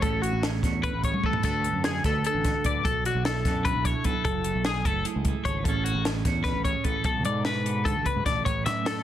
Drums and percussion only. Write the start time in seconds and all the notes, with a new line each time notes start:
0.02 kick, closed hi-hat
0.23 closed hi-hat
0.43 snare, closed hi-hat
0.63 kick, snare, closed hi-hat
0.83 kick, closed hi-hat
1.03 kick, closed hi-hat
1.14 high tom
1.24 kick
1.33 floor tom
1.43 kick, closed hi-hat, splash
1.64 closed hi-hat
1.84 snare, closed hi-hat
2.04 kick, snare, closed hi-hat
2.24 closed hi-hat
2.44 kick, snare, closed hi-hat
2.64 kick, closed hi-hat
2.85 kick, closed hi-hat
3.05 closed hi-hat
3.25 snare, closed hi-hat
3.45 kick, snare, closed hi-hat
3.65 kick, closed hi-hat
3.85 kick, closed hi-hat
4.04 kick, closed hi-hat
4.25 kick, closed hi-hat
4.44 closed hi-hat
4.65 snare, closed hi-hat
4.85 kick, closed hi-hat
5.05 closed hi-hat
5.25 kick, closed hi-hat
5.45 kick, closed hi-hat
5.65 kick, closed hi-hat
5.86 closed hi-hat
6.05 snare, closed hi-hat
6.25 kick, snare, closed hi-hat
6.45 kick, snare, closed hi-hat
6.65 kick, closed hi-hat
6.84 kick, closed hi-hat
7.04 kick, closed hi-hat
7.25 closed hi-hat
7.45 snare, closed hi-hat
7.66 closed hi-hat
7.86 kick, closed hi-hat
8.06 kick, closed hi-hat
8.26 kick, snare, closed hi-hat
8.46 kick, closed hi-hat
8.66 snare, closed hi-hat
8.86 snare, closed hi-hat